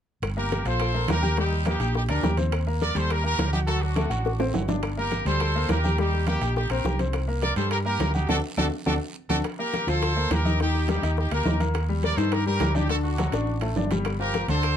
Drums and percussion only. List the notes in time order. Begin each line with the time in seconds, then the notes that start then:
0.22 high bongo, high conga, high timbale, long guiro, claves
0.38 high conga
0.51 high bongo, high conga, high timbale, low timbale, short guiro
0.65 high conga, high timbale, short guiro
0.80 high bongo, high conga, high timbale, long guiro, claves
0.95 high conga
1.08 high bongo, low bongo, high conga, high timbale, low timbale, short guiro, claves
1.23 high conga, short guiro
1.37 high bongo, high conga, high timbale, long guiro
1.52 high bongo, high conga
1.66 high bongo, high conga, high timbale, low timbale, short guiro, claves
1.80 high bongo, high conga, high timbale, short guiro
1.95 high bongo, high conga, long guiro
2.09 high bongo, high conga, high timbale, claves
2.23 high bongo, low bongo, high conga, low timbale, short guiro
2.37 high conga, high timbale, short guiro
2.52 high bongo, high timbale, long guiro, claves
2.67 high conga
2.81 high bongo, high conga, high timbale, low timbale, short guiro
2.95 high conga, high timbale, short guiro
3.10 high bongo, high conga, high timbale, long guiro, claves
3.25 high conga
3.38 high bongo, low bongo, high conga, high timbale, low timbale, short guiro, claves
3.53 high conga, short guiro
3.67 high bongo, high conga, high timbale, long guiro
3.82 high bongo, high conga
3.96 high bongo, high conga, high timbale, low timbale, short guiro, claves
4.11 high bongo, high conga, high timbale, short guiro
4.25 high bongo, high conga, long guiro
4.40 low bongo, high conga, high timbale, claves
4.54 high conga, low timbale, short guiro
4.68 low bongo, high conga, low timbale, short guiro
4.83 high bongo, high conga, high timbale, long guiro, claves
4.98 high conga
5.12 high bongo, high conga, high timbale, low timbale, short guiro
5.26 high timbale, short guiro
5.40 high bongo, high conga, high timbale, long guiro, claves
5.56 high conga
5.69 high bongo, low bongo, high conga, high timbale, low timbale, short guiro, claves
5.84 high conga, short guiro
5.98 high bongo, high conga, high timbale, long guiro
6.13 high bongo, high conga
6.27 high bongo, high conga, high timbale, low timbale, short guiro, claves
6.41 high bongo, high conga, high timbale, short guiro
6.56 high bongo, high conga, long guiro
6.70 high bongo, high conga, high timbale, claves
6.85 high bongo, low bongo, high conga, low timbale, short guiro
6.99 high conga, high timbale, short guiro
7.13 high bongo, high conga, high timbale, long guiro, claves
7.29 high conga
7.42 high bongo, high conga, high timbale, low timbale, short guiro
7.56 high conga, high timbale, short guiro
7.71 high bongo, high conga, high timbale, long guiro, claves
7.87 high conga
8.00 high bongo, low bongo, high conga, high timbale, low timbale, short guiro, claves
8.14 high conga, short guiro
8.29 low bongo, high conga, high timbale, long guiro, claves
8.57 low bongo, high conga, high timbale, long guiro, claves
8.86 low bongo, high conga, high timbale, long guiro, claves
9.30 low bongo, high conga, high timbale, long guiro, claves
9.44 high bongo, high conga, high timbale, long guiro
9.59 high conga
9.73 high bongo, high conga, high timbale, low timbale, short guiro
9.87 high conga, high timbale, short guiro
10.02 high bongo, high conga, high timbale, long guiro
10.17 high conga
10.31 high bongo, low bongo, high conga, high timbale, low timbale, short guiro
10.45 high conga, short guiro
10.60 high bongo, high conga, high timbale, long guiro
10.74 high bongo, high conga
10.88 high bongo, high conga, high timbale, low timbale, short guiro
11.03 high bongo, high conga, high timbale, short guiro
11.17 high bongo, high conga, long guiro
11.31 high bongo, high conga, high timbale
11.45 high bongo, low bongo, high conga, low timbale, short guiro
11.60 high conga, high timbale, short guiro
11.74 high bongo, high conga, high timbale, long guiro
11.89 high conga
12.03 high bongo, high conga, high timbale, low timbale, short guiro
12.17 high conga, high timbale, short guiro
12.32 high bongo, high conga, high timbale, long guiro
12.47 high conga
12.60 high bongo, low bongo, high conga, high timbale, low timbale, short guiro
12.75 high conga, short guiro
12.89 high bongo, high conga, high timbale, long guiro
13.05 high bongo, high conga
13.18 high bongo, high conga, high timbale, low timbale, short guiro
13.32 high bongo, high conga, high timbale, short guiro
13.47 high conga, long guiro
13.61 low bongo, high conga, high timbale
13.76 high conga, low timbale, short guiro
13.91 low bongo, high conga, high timbale, short guiro
14.05 high bongo, high conga, high timbale, long guiro, claves
14.21 high conga
14.34 high bongo, high conga, high timbale, low timbale, short guiro
14.48 high conga, high timbale, short guiro
14.63 high bongo, high conga, high timbale, long guiro, claves